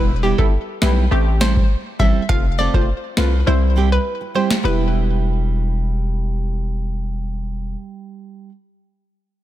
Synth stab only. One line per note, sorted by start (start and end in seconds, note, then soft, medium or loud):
0.00 0.10 G3 medium
0.00 0.10 B3 medium
0.00 0.11 E4 loud
0.39 0.54 G3 medium
0.39 0.54 B3 medium
0.39 0.54 E4 medium
0.82 0.98 G3 medium
0.82 0.99 B3 medium
0.82 0.99 E4 medium
1.11 2.20 A3 medium
1.11 2.20 C4 medium
1.11 2.21 G4 loud
2.29 2.46 A3 medium
2.29 2.46 C4 medium
2.29 2.46 F4 loud
2.74 2.89 A3 medium
2.74 2.89 C4 medium
2.74 2.89 F4 medium
3.17 3.34 A3 medium
3.17 3.34 C4 medium
3.17 3.34 F4 medium
3.46 4.55 G3 medium
3.46 4.56 C4 medium
3.46 4.56 E4 loud
4.64 8.45 G3 medium
4.64 8.46 B3 medium
4.64 8.46 E4 loud